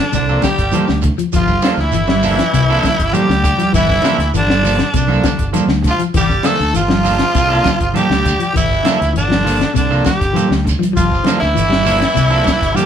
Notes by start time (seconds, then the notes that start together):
Already playing: D4
0.12 C2 C3 D3 D4, muted clean electric guitar stroke, kick, closed hi-hat, shekere
0.29 F3 A#3 D4 A4, shekere
0.41 D3 G3 G4, kick, snare, closed hi-hat, high conga, shekere
0.58 G1, muted clean electric guitar stroke, kick, snare, closed hi-hat, shekere
0.72 E3 F3 A#3 D4 A4, closed hi-hat, high conga, shekere
0.87 D2 D3, muted clean electric guitar stroke, snare, shekere
1.02 muted clean electric guitar stroke, kick, closed hi-hat, low conga, shekere
1.18 F3, closed hi-hat, shekere
1.32 G1 F3 F4, kick, closed hi-hat, shekere
1.47 muted clean electric guitar stroke, kick, high conga, shekere
1.62 F3 A#3 D4 A4, snare, closed hi-hat, high conga, shekere
1.77 D2 E3 E4, muted clean electric guitar stroke, snare, shekere
1.92 G1 E3, closed hi-hat, shekere
2.07 G3, muted clean electric guitar stroke, snare, high conga, shekere
2.23 F3 A#3 D4 A4, open hi-hat, low conga, shekere
2.38 F3, muted clean electric guitar stroke, snare, closed hi-hat, shekere
2.53 C2 C3, muted clean electric guitar stroke, kick, closed hi-hat, shekere
2.70 F3 A#3 D4 A4, shekere
2.83 D3, kick, snare, closed hi-hat, high conga, shekere
2.99 G1, muted clean electric guitar stroke, kick, snare, closed hi-hat, shekere
3.13 E3 F3 G3 A#3 D4 G4 A4, closed hi-hat, high conga, shekere
3.28 D2 D3, muted clean electric guitar stroke, snare, shekere
3.43 muted clean electric guitar stroke, kick, closed hi-hat, low conga, shekere
3.58 F3, closed hi-hat, high conga, shekere
3.73 G1 E3 E4, kick, closed hi-hat, shekere
3.88 muted clean electric guitar stroke, kick, snare, high conga, shekere
4.02 D3 F3 A#3 D4 A4, snare, closed hi-hat, high conga, shekere
4.18 D2, muted clean electric guitar stroke, snare, closed hi-hat, shekere
4.34 G1 D3 E3 D4, closed hi-hat, shekere
4.47 muted clean electric guitar stroke, snare, high conga
4.52 shekere
4.62 F3 A#3 D4 A4, open hi-hat, low conga, shekere
4.78 D3, muted clean electric guitar stroke, snare, closed hi-hat, shekere
4.94 C2 C3 D3 D4, muted clean electric guitar stroke, kick, closed hi-hat, shekere
5.08 F3 A#3 D4 A4, high conga
5.12 shekere
5.24 D3, kick, snare, closed hi-hat, high conga, shekere
5.38 G1, muted clean electric guitar stroke, kick, closed hi-hat
5.42 shekere
5.53 E3 F3 A#3 D4 A4, closed hi-hat, high conga, shekere
5.68 D2 D3, muted clean electric guitar stroke, snare
5.73 shekere
5.82 F3, muted clean electric guitar stroke, kick, snare, closed hi-hat, low conga
5.87 F4, shekere
5.99 F3, closed hi-hat, shekere
6.14 G1 E3 G3 G4, kick, snare, closed hi-hat, shekere
6.18 G4
6.29 muted clean electric guitar stroke, kick, snare, shekere
6.43 D3 F3 A3 A#3 D4 A4, snare, closed hi-hat, high conga, shekere
6.58 D2, muted clean electric guitar stroke, snare, shekere
6.73 G1 E3 F3 F4, closed hi-hat, shekere
6.78 F4
6.88 F3, muted clean electric guitar stroke, snare, high conga
6.92 shekere
7.03 F3 A#3 D4 A4, open hi-hat, low conga, shekere
7.19 D3, muted clean electric guitar stroke, snare, closed hi-hat, shekere
7.34 C2 C3, muted clean electric guitar stroke, kick, closed hi-hat, shekere
7.49 A#3 D4 A4, muted clean electric guitar stroke, shekere
7.64 D3, kick, snare, closed hi-hat, high conga, shekere
7.79 G1, muted clean electric guitar stroke, kick, closed hi-hat
7.83 shekere
7.94 E3 F3 G3 A#3 D4 G4 A4, closed hi-hat, high conga, shekere
8.09 D2 D3, muted clean electric guitar stroke, snare
8.14 shekere
8.24 muted clean electric guitar stroke, kick, closed hi-hat, low conga, shekere
8.39 F3, closed hi-hat
8.44 shekere
8.53 G1 E3 E4, kick, closed hi-hat, shekere
8.69 muted clean electric guitar stroke, kick
8.74 shekere
8.83 D3 F3 A#3 D4 A4, snare, closed hi-hat, high conga
8.88 shekere
9.01 D2, muted clean electric guitar stroke, closed hi-hat, shekere
9.13 G1 D3 E3 D4, closed hi-hat
9.18 D4, shekere
9.28 F3, muted clean electric guitar stroke, snare, high conga
9.32 shekere
9.44 F3 A#3 D4 A4, open hi-hat, low conga, shekere
9.59 D3, muted clean electric guitar stroke, snare, closed hi-hat, shekere
9.74 C2 C3 D3 D4, muted clean electric guitar stroke, kick, closed hi-hat, shekere
9.90 F3 A#3 D4 A4, shekere
10.03 D3 G3 G4, kick, snare, closed hi-hat, high conga, shekere
10.08 G4
10.20 G1, muted clean electric guitar stroke, kick, snare, closed hi-hat, shekere
10.33 E3 F3 A#3 A4, muted clean electric guitar stroke, closed hi-hat, high conga
10.38 shekere
10.49 D2 D3, muted clean electric guitar stroke, snare, shekere
10.64 muted clean electric guitar stroke, kick, snare, closed hi-hat, low conga
10.69 shekere
10.79 F3, high conga, shekere
10.83 closed hi-hat
10.93 F3 F4, kick, shekere
10.97 G1, closed hi-hat
11.10 muted clean electric guitar stroke, kick
11.14 shekere
11.24 D3 F3 A#3 D4 A4, snare, closed hi-hat, high conga
11.28 shekere
11.40 D2 E3 E4, muted clean electric guitar stroke, snare, shekere
11.55 G1 E3, closed hi-hat, shekere
11.70 G3, muted clean electric guitar stroke, snare, high conga, shekere
11.84 F3 A#3 D4 A4, open hi-hat, low conga, shekere
12.00 D3, muted clean electric guitar stroke, snare, closed hi-hat, shekere
12.14 C2 C3, muted clean electric guitar stroke, kick, closed hi-hat, shekere
12.30 F3 A#3 D4 A4, shekere
12.44 muted clean electric guitar stroke, kick, snare, closed hi-hat, high conga, shekere
12.60 G1, muted clean electric guitar stroke, kick, closed hi-hat, shekere
12.73 E3 F3 G3 A#3 D4 G4, high conga, shekere
12.77 A4, closed hi-hat